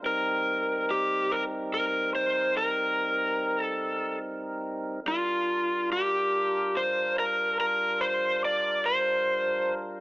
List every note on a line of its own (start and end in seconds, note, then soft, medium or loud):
0.02 5.00 G3 medium
0.02 5.00 C4 medium
0.02 5.00 D#4 medium
0.02 5.00 A#4 medium
0.02 0.90 A#4 medium
0.91 1.32 G4 medium
1.32 1.43 A#4 medium
1.74 2.15 A#4 medium
2.15 2.57 C5 medium
2.57 3.61 A#4 medium
3.61 4.18 A4 medium
5.05 10.00 G3 medium
5.05 10.00 D4 medium
5.05 10.00 F4 medium
5.05 5.92 F4 medium
5.05 10.00 A#4 medium
5.93 6.76 G4 medium
6.77 7.17 C5 medium
7.19 7.59 A#4 medium
7.60 8.01 A#4 medium
8.01 8.42 C5 medium
8.45 8.85 D5 medium
8.85 9.73 C5 medium